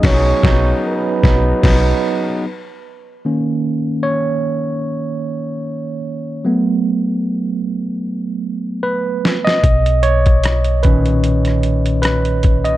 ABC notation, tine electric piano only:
X:1
M:4/4
L:1/16
Q:"Swing 16ths" 1/4=75
K:B
V:1 name="Tine electric piano"
[F,B,DG]2 [F,B,D]2 z2 [F,B,D]2 [F,B,D]2 z6 | z4 c8- c2 z2 | z12 B3 d- | d2 c4 B6 B3 d |]
V:2 name="Tine electric piano"
z16 | [D,A,C]2 z12 z2 | [F,=A,B,]6 z8 z2 | z6 [A,,D,C]8- [A,,D,C]2 |]